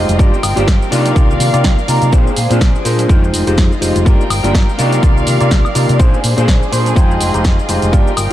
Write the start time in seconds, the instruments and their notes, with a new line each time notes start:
Already playing: tine electric piano G#3 D#4 F4 G4 C5, violin section F4 D#5
0.08 fingered electric bass F1, closed hi-hat, cabasa
0.18 fingered electric bass G2, tine electric piano A#3 D4 F4 G4 D5, clean electric guitar F4 G4 A#4, violin section A#4 G5, kick, closed hi-hat, cabasa
0.34 cabasa
0.43 fingered electric bass G1, open hi-hat, cabasa, high woodblock
0.56 fingered electric bass G1, tine electric piano A#3 D4 F4 G4 D5, clean electric guitar F4 G4 C5, closed hi-hat, cabasa
0.68 fingered electric bass G2, kick, snare, closed hi-hat, cabasa
0.82 cabasa
0.90 fingered electric bass C3, tine electric piano A#3 D#4 F4 G4 D5, clean electric guitar D4 D#4 F4 A#4, violin section D5 F5, open hi-hat, cabasa
1.06 closed hi-hat, cabasa
1.15 fingered electric bass C2, tine electric piano D#3 A#3 F4 G4 D5, kick, closed hi-hat, cabasa
1.31 cabasa
1.39 fingered electric bass C3, muted clean electric guitar stroke, open hi-hat, cabasa
1.53 fingered electric bass C3, tine electric piano A#3 D#4 F4 G4 D5, closed hi-hat, cabasa
1.64 fingered electric bass C2, kick, snare, closed hi-hat, cabasa
1.78 cabasa
1.88 fingered electric bass C3, tine electric piano A#3 D#4 F4 G4 D5, clean electric guitar A#5, muted clean electric guitar stroke, open hi-hat, cabasa
2.02 fingered electric bass C3, closed hi-hat, cabasa
2.12 fingered electric bass A#1, tine electric piano A#3 D4 F4 G#4 C5, clean electric guitar C4 D4 G#4 G5, violin section D4 G#4 C5, kick, closed hi-hat, cabasa
2.26 muted fingered electric bass stroke, cabasa
2.36 fingered electric bass A#2, clean electric guitar F5, open hi-hat, cabasa
2.50 fingered electric bass A#2, tine electric piano A#3 D4 F4 G#4 C5, clean electric guitar C4 D4 F4, closed hi-hat, cabasa
2.61 fingered electric bass A#1, clean electric guitar D5, kick, snare, closed hi-hat, cabasa
2.75 cabasa
2.85 fingered electric bass A#2, tine electric piano A#3 D4 F4 G#4 C5, clean electric guitar A#4, open hi-hat, cabasa
2.98 muted clean electric guitar stroke, closed hi-hat, cabasa
3.08 fingered electric bass F2, tine electric piano G#3 D#4 F4 C5 G5, clean electric guitar D#4 F4 G#4, violin section F4 D#5, kick, closed hi-hat, cabasa
3.24 cabasa
3.33 fingered electric bass F1, muted clean electric guitar stroke, open hi-hat, cabasa
3.47 fingered electric bass F1, tine electric piano G#3 D#4 F4 G4 C5, closed hi-hat, cabasa
3.58 fingered electric bass F2, kick, snare, closed hi-hat, cabasa
3.72 cabasa
3.81 fingered electric bass F1, tine electric piano G#3 D#4 F4 G4 C5, muted clean electric guitar stroke, open hi-hat, cabasa
3.95 fingered electric bass F1, closed hi-hat, cabasa
4.05 fingered electric bass G2, tine electric piano A#3 D4 F4 G4 D5, clean electric guitar F4 G4 A#4, violin section A#4 G5, kick, closed hi-hat, cabasa
4.21 cabasa
4.30 fingered electric bass G1, open hi-hat, cabasa, high woodblock
4.43 fingered electric bass G1, tine electric piano A#3 D4 F4 G4 D5, clean electric guitar F4 G4 A#4, closed hi-hat, cabasa
4.55 kick, snare, closed hi-hat, cabasa
4.69 cabasa
4.78 fingered electric bass C3, tine electric piano A#3 D#4 F4 G4 D5, clean electric guitar D4 D#4 F4 A#4, violin section D5 F5, open hi-hat, cabasa
4.92 closed hi-hat, cabasa
5.02 fingered electric bass C2, tine electric piano D#3 A#3 F4 G4 D5, kick, closed hi-hat, cabasa
5.17 cabasa
5.26 fingered electric bass C3, muted clean electric guitar stroke, open hi-hat, cabasa
5.40 fingered electric bass C3, tine electric piano A#3 D#4 F4 G4 D5, closed hi-hat, cabasa
5.51 fingered electric bass C2, kick, snare, closed hi-hat, cabasa
5.65 cabasa, high woodblock
5.75 fingered electric bass C3, tine electric piano A#3 D#4 F4 G4 D5, muted clean electric guitar stroke, open hi-hat, cabasa
5.89 fingered electric bass C3, closed hi-hat, cabasa
5.99 fingered electric bass A#1, tine electric piano A#3 D4 F4 G#4 C5, clean electric guitar C4 D4 G#4, violin section D4 G#4 C5, kick, closed hi-hat, cabasa
6.13 muted fingered electric bass stroke, cabasa
6.24 fingered electric bass A#2, open hi-hat, cabasa
6.37 fingered electric bass A#2, tine electric piano A#3 D4 F4 G#4 C5, clean electric guitar C4 D4 G#4, closed hi-hat, cabasa
6.48 fingered electric bass A#1, kick, snare, closed hi-hat, cabasa
6.63 cabasa
6.72 fingered electric bass A#2, tine electric piano A#3 D4 F4 G#4 C5, open hi-hat, cabasa
6.85 muted clean electric guitar stroke, closed hi-hat, cabasa
6.95 fingered electric bass F2, tine electric piano G#3 D#4 F4 C5 G5, clean electric guitar D#4 F4 G#4, violin section F4 D#5, kick, closed hi-hat, cabasa
7.11 cabasa
7.20 fingered electric bass F1, muted clean electric guitar stroke, open hi-hat, cabasa
7.34 fingered electric bass F1, tine electric piano G#3 D#4 F4 G4 C5, closed hi-hat, cabasa
7.44 fingered electric bass F2, kick, snare, closed hi-hat, cabasa
7.59 cabasa
7.68 fingered electric bass F1, tine electric piano G#3 D#4 F4 G4 C5, muted clean electric guitar stroke, open hi-hat, cabasa
7.82 fingered electric bass F1, closed hi-hat, cabasa
7.92 fingered electric bass G2, tine electric piano A#3 D4 F4 G4 D5, clean electric guitar F4 G4 A#4, violin section A#4 G5, kick, closed hi-hat, cabasa
8.07 cabasa
8.17 fingered electric bass G1, open hi-hat, cabasa, high woodblock